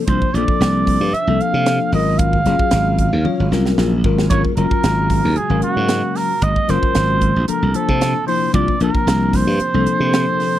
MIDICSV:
0, 0, Header, 1, 7, 480
1, 0, Start_track
1, 0, Tempo, 528634
1, 72, Time_signature, 4, 2, 24, 8
1, 9617, End_track
2, 0, Start_track
2, 0, Title_t, "Muted trumpet"
2, 0, Program_c, 0, 59
2, 68, Note_on_c, 0, 72, 85
2, 311, Note_on_c, 0, 74, 97
2, 324, Note_off_c, 0, 72, 0
2, 1030, Note_on_c, 0, 76, 95
2, 1043, Note_off_c, 0, 74, 0
2, 1281, Note_on_c, 0, 77, 99
2, 1295, Note_off_c, 0, 76, 0
2, 1757, Note_off_c, 0, 77, 0
2, 1763, Note_on_c, 0, 75, 85
2, 1983, Note_on_c, 0, 77, 98
2, 1997, Note_off_c, 0, 75, 0
2, 3428, Note_off_c, 0, 77, 0
2, 3904, Note_on_c, 0, 73, 95
2, 4014, Note_off_c, 0, 73, 0
2, 4156, Note_on_c, 0, 70, 90
2, 4871, Note_on_c, 0, 68, 87
2, 4884, Note_off_c, 0, 70, 0
2, 5112, Note_off_c, 0, 68, 0
2, 5117, Note_on_c, 0, 66, 95
2, 5601, Note_on_c, 0, 70, 88
2, 5614, Note_off_c, 0, 66, 0
2, 5841, Note_on_c, 0, 75, 102
2, 5854, Note_off_c, 0, 70, 0
2, 6086, Note_on_c, 0, 72, 108
2, 6100, Note_off_c, 0, 75, 0
2, 6793, Note_off_c, 0, 72, 0
2, 6798, Note_on_c, 0, 70, 85
2, 7039, Note_on_c, 0, 69, 99
2, 7053, Note_off_c, 0, 70, 0
2, 7506, Note_off_c, 0, 69, 0
2, 7512, Note_on_c, 0, 72, 95
2, 7735, Note_off_c, 0, 72, 0
2, 7754, Note_on_c, 0, 74, 97
2, 7976, Note_off_c, 0, 74, 0
2, 8015, Note_on_c, 0, 70, 90
2, 8497, Note_on_c, 0, 72, 94
2, 8511, Note_off_c, 0, 70, 0
2, 9617, Note_off_c, 0, 72, 0
2, 9617, End_track
3, 0, Start_track
3, 0, Title_t, "Tine electric piano"
3, 0, Program_c, 1, 4
3, 78, Note_on_c, 1, 53, 71
3, 80, Note_on_c, 1, 58, 58
3, 80, Note_on_c, 1, 72, 72
3, 81, Note_on_c, 1, 62, 68
3, 264, Note_off_c, 1, 53, 0
3, 265, Note_off_c, 1, 58, 0
3, 265, Note_off_c, 1, 72, 0
3, 266, Note_off_c, 1, 62, 0
3, 329, Note_on_c, 1, 53, 76
3, 335, Note_on_c, 1, 62, 74
3, 336, Note_on_c, 1, 58, 72
3, 341, Note_on_c, 1, 69, 81
3, 977, Note_off_c, 1, 53, 0
3, 980, Note_off_c, 1, 58, 0
3, 980, Note_off_c, 1, 62, 0
3, 983, Note_off_c, 1, 69, 0
3, 1165, Note_on_c, 1, 53, 78
3, 1166, Note_on_c, 1, 58, 65
3, 1169, Note_on_c, 1, 62, 66
3, 1177, Note_on_c, 1, 69, 82
3, 1749, Note_on_c, 1, 54, 64
3, 1755, Note_off_c, 1, 53, 0
3, 1756, Note_off_c, 1, 58, 0
3, 1758, Note_off_c, 1, 62, 0
3, 1761, Note_on_c, 1, 61, 60
3, 1762, Note_off_c, 1, 69, 0
3, 1762, Note_on_c, 1, 65, 58
3, 1768, Note_on_c, 1, 70, 70
3, 2140, Note_off_c, 1, 54, 0
3, 2146, Note_off_c, 1, 61, 0
3, 2147, Note_off_c, 1, 65, 0
3, 2150, Note_off_c, 1, 70, 0
3, 2233, Note_on_c, 1, 54, 79
3, 2234, Note_on_c, 1, 65, 68
3, 2236, Note_on_c, 1, 61, 72
3, 2241, Note_on_c, 1, 68, 83
3, 2797, Note_off_c, 1, 54, 0
3, 2797, Note_off_c, 1, 65, 0
3, 2798, Note_off_c, 1, 61, 0
3, 2800, Note_off_c, 1, 68, 0
3, 2951, Note_on_c, 1, 54, 74
3, 2955, Note_on_c, 1, 61, 65
3, 2956, Note_on_c, 1, 65, 68
3, 2956, Note_on_c, 1, 73, 86
3, 3142, Note_off_c, 1, 54, 0
3, 3143, Note_off_c, 1, 61, 0
3, 3144, Note_off_c, 1, 65, 0
3, 3144, Note_off_c, 1, 73, 0
3, 3192, Note_on_c, 1, 54, 81
3, 3198, Note_on_c, 1, 65, 71
3, 3199, Note_on_c, 1, 61, 72
3, 3206, Note_on_c, 1, 70, 83
3, 3571, Note_off_c, 1, 54, 0
3, 3574, Note_off_c, 1, 65, 0
3, 3575, Note_off_c, 1, 61, 0
3, 3578, Note_off_c, 1, 70, 0
3, 3670, Note_on_c, 1, 54, 76
3, 3672, Note_on_c, 1, 61, 64
3, 3677, Note_on_c, 1, 65, 69
3, 3685, Note_on_c, 1, 70, 85
3, 3861, Note_off_c, 1, 54, 0
3, 3862, Note_off_c, 1, 61, 0
3, 3864, Note_off_c, 1, 65, 0
3, 3868, Note_off_c, 1, 70, 0
3, 3910, Note_on_c, 1, 61, 61
3, 3913, Note_on_c, 1, 54, 68
3, 3919, Note_on_c, 1, 65, 62
3, 3924, Note_on_c, 1, 70, 76
3, 4101, Note_off_c, 1, 61, 0
3, 4102, Note_off_c, 1, 54, 0
3, 4105, Note_off_c, 1, 65, 0
3, 4108, Note_off_c, 1, 70, 0
3, 4149, Note_on_c, 1, 61, 63
3, 4151, Note_on_c, 1, 54, 75
3, 4154, Note_on_c, 1, 65, 69
3, 4161, Note_on_c, 1, 70, 86
3, 4808, Note_off_c, 1, 54, 0
3, 4808, Note_off_c, 1, 61, 0
3, 4810, Note_off_c, 1, 65, 0
3, 4813, Note_off_c, 1, 70, 0
3, 4994, Note_on_c, 1, 54, 78
3, 4997, Note_on_c, 1, 61, 69
3, 5000, Note_on_c, 1, 77, 67
3, 5006, Note_on_c, 1, 70, 83
3, 5741, Note_off_c, 1, 54, 0
3, 5743, Note_off_c, 1, 61, 0
3, 5744, Note_off_c, 1, 77, 0
3, 5747, Note_off_c, 1, 70, 0
3, 6063, Note_on_c, 1, 54, 75
3, 6070, Note_on_c, 1, 61, 72
3, 6074, Note_on_c, 1, 65, 75
3, 6080, Note_on_c, 1, 70, 92
3, 6631, Note_off_c, 1, 54, 0
3, 6635, Note_off_c, 1, 61, 0
3, 6637, Note_off_c, 1, 65, 0
3, 6640, Note_off_c, 1, 70, 0
3, 6795, Note_on_c, 1, 53, 64
3, 6795, Note_on_c, 1, 58, 59
3, 6796, Note_on_c, 1, 62, 57
3, 6805, Note_on_c, 1, 69, 67
3, 6983, Note_off_c, 1, 53, 0
3, 6983, Note_off_c, 1, 58, 0
3, 6984, Note_off_c, 1, 62, 0
3, 6988, Note_off_c, 1, 69, 0
3, 7026, Note_on_c, 1, 53, 72
3, 7032, Note_on_c, 1, 58, 64
3, 7040, Note_on_c, 1, 62, 59
3, 7045, Note_on_c, 1, 72, 71
3, 7408, Note_off_c, 1, 53, 0
3, 7411, Note_off_c, 1, 58, 0
3, 7415, Note_off_c, 1, 62, 0
3, 7418, Note_off_c, 1, 72, 0
3, 7509, Note_on_c, 1, 53, 66
3, 7513, Note_on_c, 1, 58, 61
3, 7518, Note_on_c, 1, 62, 59
3, 7519, Note_on_c, 1, 64, 71
3, 7700, Note_off_c, 1, 53, 0
3, 7702, Note_off_c, 1, 58, 0
3, 7705, Note_off_c, 1, 62, 0
3, 7705, Note_off_c, 1, 64, 0
3, 7745, Note_on_c, 1, 53, 72
3, 7746, Note_on_c, 1, 58, 68
3, 7753, Note_on_c, 1, 62, 63
3, 7759, Note_on_c, 1, 65, 77
3, 7938, Note_off_c, 1, 53, 0
3, 7939, Note_off_c, 1, 58, 0
3, 7942, Note_off_c, 1, 62, 0
3, 7945, Note_off_c, 1, 65, 0
3, 7999, Note_on_c, 1, 58, 70
3, 8001, Note_on_c, 1, 53, 82
3, 8006, Note_on_c, 1, 62, 75
3, 8009, Note_on_c, 1, 70, 81
3, 8652, Note_off_c, 1, 58, 0
3, 8653, Note_off_c, 1, 53, 0
3, 8655, Note_off_c, 1, 62, 0
3, 8657, Note_off_c, 1, 70, 0
3, 8843, Note_on_c, 1, 53, 73
3, 8846, Note_on_c, 1, 58, 69
3, 8847, Note_on_c, 1, 62, 72
3, 8851, Note_on_c, 1, 69, 82
3, 9585, Note_off_c, 1, 53, 0
3, 9587, Note_off_c, 1, 58, 0
3, 9587, Note_off_c, 1, 62, 0
3, 9589, Note_off_c, 1, 69, 0
3, 9617, End_track
4, 0, Start_track
4, 0, Title_t, "String machine"
4, 0, Program_c, 2, 50
4, 0, Note_on_c, 2, 48, 78
4, 0, Note_on_c, 2, 53, 70
4, 0, Note_on_c, 2, 60, 65
4, 0, Note_on_c, 2, 62, 87
4, 1719, Note_off_c, 2, 62, 0
4, 1720, Note_off_c, 2, 53, 0
4, 1724, Note_off_c, 2, 48, 0
4, 1732, Note_off_c, 2, 60, 0
4, 1763, Note_on_c, 2, 54, 62
4, 1767, Note_on_c, 2, 77, 87
4, 1768, Note_on_c, 2, 58, 68
4, 1769, Note_on_c, 2, 49, 77
4, 1770, Note_on_c, 2, 56, 67
4, 6762, Note_off_c, 2, 54, 0
4, 6764, Note_off_c, 2, 77, 0
4, 6765, Note_off_c, 2, 49, 0
4, 6765, Note_off_c, 2, 56, 0
4, 6765, Note_off_c, 2, 58, 0
4, 6786, Note_on_c, 2, 62, 78
4, 6787, Note_on_c, 2, 48, 75
4, 6788, Note_on_c, 2, 53, 71
4, 6792, Note_on_c, 2, 58, 67
4, 9617, Note_off_c, 2, 48, 0
4, 9617, Note_off_c, 2, 53, 0
4, 9617, Note_off_c, 2, 58, 0
4, 9617, Note_off_c, 2, 62, 0
4, 9617, End_track
5, 0, Start_track
5, 0, Title_t, "Slap bass"
5, 0, Program_c, 3, 36
5, 69, Note_on_c, 3, 36, 81
5, 187, Note_off_c, 3, 36, 0
5, 307, Note_on_c, 3, 34, 82
5, 426, Note_off_c, 3, 34, 0
5, 548, Note_on_c, 3, 36, 82
5, 889, Note_off_c, 3, 36, 0
5, 915, Note_on_c, 3, 43, 82
5, 1022, Note_off_c, 3, 43, 0
5, 1156, Note_on_c, 3, 36, 71
5, 1262, Note_off_c, 3, 36, 0
5, 1395, Note_on_c, 3, 48, 85
5, 1619, Note_off_c, 3, 48, 0
5, 1746, Note_on_c, 3, 32, 93
5, 2193, Note_off_c, 3, 32, 0
5, 2230, Note_on_c, 3, 30, 74
5, 2348, Note_off_c, 3, 30, 0
5, 2474, Note_on_c, 3, 32, 79
5, 2812, Note_off_c, 3, 32, 0
5, 2839, Note_on_c, 3, 39, 80
5, 2944, Note_off_c, 3, 39, 0
5, 3084, Note_on_c, 3, 32, 69
5, 3187, Note_off_c, 3, 32, 0
5, 3191, Note_on_c, 3, 36, 80
5, 3408, Note_off_c, 3, 36, 0
5, 3429, Note_on_c, 3, 34, 82
5, 3647, Note_off_c, 3, 34, 0
5, 3673, Note_on_c, 3, 32, 76
5, 3889, Note_off_c, 3, 32, 0
5, 3914, Note_on_c, 3, 32, 80
5, 4031, Note_off_c, 3, 32, 0
5, 4149, Note_on_c, 3, 30, 77
5, 4268, Note_off_c, 3, 30, 0
5, 4391, Note_on_c, 3, 32, 85
5, 4731, Note_off_c, 3, 32, 0
5, 4765, Note_on_c, 3, 39, 76
5, 4867, Note_off_c, 3, 39, 0
5, 4991, Note_on_c, 3, 32, 76
5, 5100, Note_off_c, 3, 32, 0
5, 5234, Note_on_c, 3, 44, 84
5, 5459, Note_off_c, 3, 44, 0
5, 5832, Note_on_c, 3, 32, 85
5, 5950, Note_off_c, 3, 32, 0
5, 6073, Note_on_c, 3, 30, 78
5, 6190, Note_off_c, 3, 30, 0
5, 6318, Note_on_c, 3, 32, 79
5, 6655, Note_off_c, 3, 32, 0
5, 6685, Note_on_c, 3, 34, 83
5, 6787, Note_off_c, 3, 34, 0
5, 6923, Note_on_c, 3, 36, 70
5, 7026, Note_off_c, 3, 36, 0
5, 7162, Note_on_c, 3, 48, 85
5, 7383, Note_off_c, 3, 48, 0
5, 7756, Note_on_c, 3, 36, 81
5, 7872, Note_off_c, 3, 36, 0
5, 7995, Note_on_c, 3, 34, 87
5, 8111, Note_off_c, 3, 34, 0
5, 8235, Note_on_c, 3, 36, 89
5, 8573, Note_off_c, 3, 36, 0
5, 8600, Note_on_c, 3, 43, 78
5, 8704, Note_off_c, 3, 43, 0
5, 8845, Note_on_c, 3, 36, 74
5, 8947, Note_off_c, 3, 36, 0
5, 9081, Note_on_c, 3, 48, 80
5, 9302, Note_off_c, 3, 48, 0
5, 9617, End_track
6, 0, Start_track
6, 0, Title_t, "Muted slap bass strokes"
6, 1028, Note_on_c, 9, 29, 36
6, 1119, Note_off_c, 9, 29, 0
6, 2358, Note_on_c, 9, 29, 33
6, 2449, Note_off_c, 9, 29, 0
6, 2955, Note_on_c, 9, 29, 31
6, 3046, Note_off_c, 9, 29, 0
6, 4879, Note_on_c, 9, 29, 35
6, 4970, Note_off_c, 9, 29, 0
6, 6806, Note_on_c, 9, 29, 34
6, 6896, Note_off_c, 9, 29, 0
6, 8717, Note_on_c, 9, 29, 36
6, 8808, Note_off_c, 9, 29, 0
6, 9617, End_track
7, 0, Start_track
7, 0, Title_t, "Drums"
7, 68, Note_on_c, 9, 42, 71
7, 69, Note_on_c, 9, 36, 102
7, 159, Note_off_c, 9, 42, 0
7, 160, Note_off_c, 9, 36, 0
7, 197, Note_on_c, 9, 36, 78
7, 288, Note_off_c, 9, 36, 0
7, 317, Note_on_c, 9, 42, 56
7, 408, Note_off_c, 9, 42, 0
7, 437, Note_on_c, 9, 36, 85
7, 528, Note_off_c, 9, 36, 0
7, 557, Note_on_c, 9, 42, 70
7, 561, Note_on_c, 9, 38, 96
7, 647, Note_off_c, 9, 42, 0
7, 652, Note_off_c, 9, 38, 0
7, 792, Note_on_c, 9, 36, 73
7, 797, Note_on_c, 9, 46, 60
7, 882, Note_off_c, 9, 36, 0
7, 888, Note_off_c, 9, 46, 0
7, 1039, Note_on_c, 9, 42, 70
7, 1130, Note_off_c, 9, 42, 0
7, 1276, Note_on_c, 9, 42, 52
7, 1367, Note_off_c, 9, 42, 0
7, 1508, Note_on_c, 9, 42, 67
7, 1512, Note_on_c, 9, 38, 91
7, 1599, Note_off_c, 9, 42, 0
7, 1603, Note_off_c, 9, 38, 0
7, 1751, Note_on_c, 9, 46, 73
7, 1841, Note_off_c, 9, 46, 0
7, 1987, Note_on_c, 9, 42, 79
7, 1991, Note_on_c, 9, 36, 100
7, 2078, Note_off_c, 9, 42, 0
7, 2082, Note_off_c, 9, 36, 0
7, 2117, Note_on_c, 9, 36, 73
7, 2207, Note_off_c, 9, 36, 0
7, 2230, Note_on_c, 9, 42, 60
7, 2234, Note_on_c, 9, 38, 30
7, 2320, Note_off_c, 9, 42, 0
7, 2325, Note_off_c, 9, 38, 0
7, 2355, Note_on_c, 9, 36, 84
7, 2446, Note_off_c, 9, 36, 0
7, 2459, Note_on_c, 9, 42, 81
7, 2464, Note_on_c, 9, 38, 100
7, 2550, Note_off_c, 9, 42, 0
7, 2555, Note_off_c, 9, 38, 0
7, 2710, Note_on_c, 9, 36, 66
7, 2710, Note_on_c, 9, 42, 61
7, 2801, Note_off_c, 9, 36, 0
7, 2801, Note_off_c, 9, 42, 0
7, 2951, Note_on_c, 9, 48, 60
7, 3041, Note_off_c, 9, 48, 0
7, 3197, Note_on_c, 9, 38, 63
7, 3288, Note_off_c, 9, 38, 0
7, 3319, Note_on_c, 9, 38, 57
7, 3410, Note_off_c, 9, 38, 0
7, 3433, Note_on_c, 9, 38, 75
7, 3523, Note_off_c, 9, 38, 0
7, 3670, Note_on_c, 9, 36, 84
7, 3761, Note_off_c, 9, 36, 0
7, 3800, Note_on_c, 9, 38, 72
7, 3890, Note_off_c, 9, 38, 0
7, 3906, Note_on_c, 9, 42, 73
7, 3910, Note_on_c, 9, 36, 104
7, 3997, Note_off_c, 9, 42, 0
7, 4001, Note_off_c, 9, 36, 0
7, 4037, Note_on_c, 9, 36, 74
7, 4128, Note_off_c, 9, 36, 0
7, 4148, Note_on_c, 9, 42, 58
7, 4239, Note_off_c, 9, 42, 0
7, 4278, Note_on_c, 9, 36, 84
7, 4369, Note_off_c, 9, 36, 0
7, 4390, Note_on_c, 9, 42, 74
7, 4395, Note_on_c, 9, 38, 104
7, 4481, Note_off_c, 9, 42, 0
7, 4485, Note_off_c, 9, 38, 0
7, 4628, Note_on_c, 9, 46, 64
7, 4630, Note_on_c, 9, 36, 66
7, 4719, Note_off_c, 9, 46, 0
7, 4721, Note_off_c, 9, 36, 0
7, 4866, Note_on_c, 9, 42, 70
7, 4956, Note_off_c, 9, 42, 0
7, 5101, Note_on_c, 9, 42, 56
7, 5192, Note_off_c, 9, 42, 0
7, 5343, Note_on_c, 9, 42, 67
7, 5347, Note_on_c, 9, 38, 94
7, 5434, Note_off_c, 9, 42, 0
7, 5438, Note_off_c, 9, 38, 0
7, 5588, Note_on_c, 9, 46, 74
7, 5593, Note_on_c, 9, 38, 33
7, 5679, Note_off_c, 9, 46, 0
7, 5684, Note_off_c, 9, 38, 0
7, 5826, Note_on_c, 9, 42, 74
7, 5831, Note_on_c, 9, 36, 92
7, 5917, Note_off_c, 9, 42, 0
7, 5922, Note_off_c, 9, 36, 0
7, 5958, Note_on_c, 9, 36, 72
7, 6049, Note_off_c, 9, 36, 0
7, 6072, Note_on_c, 9, 42, 62
7, 6076, Note_on_c, 9, 38, 32
7, 6162, Note_off_c, 9, 42, 0
7, 6167, Note_off_c, 9, 38, 0
7, 6199, Note_on_c, 9, 36, 79
7, 6290, Note_off_c, 9, 36, 0
7, 6308, Note_on_c, 9, 42, 77
7, 6313, Note_on_c, 9, 38, 98
7, 6399, Note_off_c, 9, 42, 0
7, 6403, Note_off_c, 9, 38, 0
7, 6549, Note_on_c, 9, 42, 52
7, 6553, Note_on_c, 9, 36, 65
7, 6640, Note_off_c, 9, 42, 0
7, 6644, Note_off_c, 9, 36, 0
7, 6792, Note_on_c, 9, 42, 81
7, 6882, Note_off_c, 9, 42, 0
7, 7030, Note_on_c, 9, 42, 56
7, 7121, Note_off_c, 9, 42, 0
7, 7161, Note_on_c, 9, 36, 60
7, 7252, Note_off_c, 9, 36, 0
7, 7276, Note_on_c, 9, 42, 79
7, 7280, Note_on_c, 9, 38, 93
7, 7367, Note_off_c, 9, 42, 0
7, 7371, Note_off_c, 9, 38, 0
7, 7517, Note_on_c, 9, 46, 74
7, 7608, Note_off_c, 9, 46, 0
7, 7752, Note_on_c, 9, 42, 85
7, 7755, Note_on_c, 9, 36, 107
7, 7843, Note_off_c, 9, 42, 0
7, 7846, Note_off_c, 9, 36, 0
7, 7883, Note_on_c, 9, 36, 74
7, 7974, Note_off_c, 9, 36, 0
7, 7994, Note_on_c, 9, 42, 61
7, 8085, Note_off_c, 9, 42, 0
7, 8123, Note_on_c, 9, 36, 84
7, 8213, Note_off_c, 9, 36, 0
7, 8241, Note_on_c, 9, 42, 76
7, 8245, Note_on_c, 9, 38, 103
7, 8332, Note_off_c, 9, 42, 0
7, 8336, Note_off_c, 9, 38, 0
7, 8475, Note_on_c, 9, 36, 67
7, 8475, Note_on_c, 9, 46, 67
7, 8480, Note_on_c, 9, 38, 29
7, 8566, Note_off_c, 9, 36, 0
7, 8566, Note_off_c, 9, 46, 0
7, 8570, Note_off_c, 9, 38, 0
7, 8713, Note_on_c, 9, 42, 70
7, 8804, Note_off_c, 9, 42, 0
7, 8957, Note_on_c, 9, 42, 56
7, 9047, Note_off_c, 9, 42, 0
7, 9201, Note_on_c, 9, 42, 62
7, 9205, Note_on_c, 9, 38, 90
7, 9292, Note_off_c, 9, 42, 0
7, 9296, Note_off_c, 9, 38, 0
7, 9442, Note_on_c, 9, 46, 72
7, 9446, Note_on_c, 9, 38, 33
7, 9533, Note_off_c, 9, 46, 0
7, 9537, Note_off_c, 9, 38, 0
7, 9617, End_track
0, 0, End_of_file